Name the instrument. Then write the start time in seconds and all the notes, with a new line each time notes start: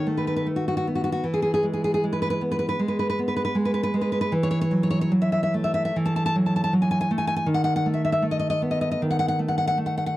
nylon-string guitar
Already playing: D#3 B3
0.07 A3
0.17 B4
0.27 B4
0.36 B4
0.46 A3
0.56 F#4
0.68 F#4
0.77 F#4
0.87 B3
0.95 F#4
1.04 F#4
1.12 F#4
1.24 E3
1.34 G#4
1.42 G#4
1.54 G#4
1.63 G#3
1.73 G#4
1.84 G#4
1.94 G#4
2.04 G#3
2.13 B4
2.22 B4
2.30 B4
2.41 B3
2.51 B4
2.59 B4
2.69 B4
2.79 G#3
2.88 B4
2.99 B4
3.10 B4
3.19 B3
3.28 B4
3.36 B4
3.45 B4
3.55 G#3
3.65 B4
3.74 B4
3.83 B4
3.94 G#3
4.01 B4
4.12 B4
4.21 B4
4.32 E3
4.43 C#5
4.51 C#5
4.61 C#5
4.71 F#3
4.83 C#5
4.90 C#5
5.01 C#5
5.12 F#3
5.22 E5
5.32 E5
5.43 E5
5.54 A3
5.64 E5
5.74 E5
5.85 E5
5.96 E3
6.06 A5
6.16 A5
6.26 A5
6.36 F#3
6.46 A5
6.56 A5
6.64 A5
6.73 F#3
6.82 G#5
6.91 G#5
7.01 G#5
7.11 A3
7.18 G#5
7.27 G#5
7.36 G#5
7.46 D#3
7.54 F#5
7.64 F#5
7.76 F#5
7.86 A3
7.94 E5
8.05 E5
8.12 E5
8.22 A3
8.31 D#5
8.39 D#5
8.50 D#5
8.62 B3
8.71 D#5
8.81 D#5
8.91 D#5
9.02 D#3
9.11 F#5
9.19 F#5
9.28 F#5
9.39 A3
9.48 F#5
9.58 F#5
9.67 F#5
9.77 A3
9.86 F#5
9.98 F#5
10.06 F#5